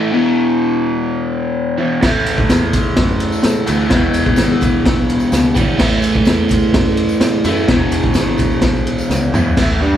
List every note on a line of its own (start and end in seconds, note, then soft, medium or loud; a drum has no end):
0.00 0.13 A2 medium
0.00 0.14 E3 medium
0.00 0.10 A3 medium
0.11 1.76 E2 medium
0.11 1.77 B2 loud
0.11 1.78 E3 loud
1.78 2.02 E2 medium
1.78 2.01 B2 medium
1.78 2.03 E3 medium
2.01 2.41 A1 loud
2.01 3.66 A2 loud
2.01 3.68 E3 loud
2.01 3.65 A3 loud
2.01 kick loud
2.01 snare loud
2.01 crash loud
2.01 tambourine soft
2.26 ride medium
2.26 tambourine medium
2.38 kick medium
2.49 2.88 E2 loud
2.49 snare loud
2.49 ride loud
2.49 tambourine medium
2.73 kick medium
2.73 ride medium
2.73 tambourine medium
2.96 3.35 F#2 medium
2.96 kick loud
2.96 snare loud
2.96 ride loud
3.09 tambourine soft
3.20 ride medium
3.20 tambourine soft
3.32 tambourine medium
3.43 3.63 A2 loud
3.43 snare loud
3.43 ride loud
3.43 tambourine loud
3.56 tambourine soft
3.67 3.87 D2 loud
3.67 3.90 A2 medium
3.67 3.92 E3 medium
3.67 3.89 A3 medium
3.67 ride medium
3.67 tambourine medium
3.80 tambourine soft
3.89 4.29 E1 loud
3.89 5.54 E2 medium
3.89 5.55 B2 loud
3.89 5.55 E3 loud
3.89 kick loud
3.89 snare loud
3.89 ride loud
3.89 tambourine soft
4.14 ride medium
4.14 tambourine medium
4.26 kick medium
4.36 4.76 G#1 loud
4.36 snare loud
4.36 ride loud
4.36 tambourine loud
4.61 kick medium
4.61 ride medium
4.61 tambourine medium
4.86 5.23 B1 medium
4.86 kick loud
4.86 snare loud
4.86 ride loud
4.97 tambourine soft
5.09 ride medium
5.09 tambourine soft
5.20 tambourine medium
5.32 5.51 C#2 medium
5.32 snare loud
5.32 ride loud
5.32 tambourine loud
5.45 tambourine soft
5.55 5.75 G#1 loud
5.55 5.77 B2 medium
5.55 5.79 E3 medium
5.55 kick medium
5.55 ride medium
5.55 tambourine medium
5.59 5.80 E2 medium
5.67 tambourine soft
5.78 6.18 A1 loud
5.78 7.43 A2 medium
5.78 7.47 E3 medium
5.78 7.44 A3 loud
5.78 kick loud
5.78 snare loud
5.78 crash loud
5.78 tambourine soft
6.02 ride medium
6.02 tambourine medium
6.15 kick medium
6.25 6.65 E2 loud
6.25 snare loud
6.25 ride loud
6.25 tambourine loud
6.49 kick medium
6.49 ride medium
6.49 tambourine medium
6.74 7.12 F#2 medium
6.74 kick loud
6.74 snare loud
6.74 ride loud
6.85 tambourine soft
6.97 ride medium
6.97 tambourine soft
7.09 tambourine medium
7.20 7.40 A2 medium
7.20 snare loud
7.20 ride loud
7.20 tambourine loud
7.33 tambourine soft
7.44 7.64 F#2 loud
7.44 7.72 E3 medium
7.44 7.67 A3 medium
7.44 ride medium
7.44 tambourine medium
7.49 7.69 A2 medium
7.57 tambourine soft
7.68 8.07 E1 loud
7.68 9.32 E2 medium
7.68 9.33 B2 loud
7.68 kick loud
7.68 snare loud
7.68 ride loud
7.68 tambourine soft
7.73 9.33 E3 loud
7.91 ride medium
7.91 tambourine medium
8.04 kick medium
8.14 8.53 G#1 loud
8.14 snare loud
8.14 ride loud
8.14 tambourine loud
8.38 kick medium
8.38 ride medium
8.38 tambourine medium
8.50 tambourine soft
8.61 9.01 B1 medium
8.61 kick loud
8.61 snare loud
8.61 ride loud
8.61 tambourine soft
8.74 tambourine soft
8.87 ride medium
8.87 tambourine soft
8.98 tambourine medium
9.09 9.29 C#2 loud
9.09 snare medium
9.09 tambourine loud
9.33 9.52 E2 medium
9.33 9.57 B2 medium
9.33 9.56 E3 medium
9.33 mid tom loud
9.33 tambourine medium
9.38 9.58 E2 medium
9.45 floor tom medium
9.57 9.79 A1 loud
9.57 9.81 A2 medium
9.57 9.81 E3 loud
9.57 9.81 A3 loud
9.57 kick loud
9.57 snare loud
9.57 crash loud
9.57 tambourine soft
9.57 crash medium
9.81 9.93 G2 medium
9.81 9.92 G3 medium
9.81 9.93 D4 loud
9.81 tambourine soft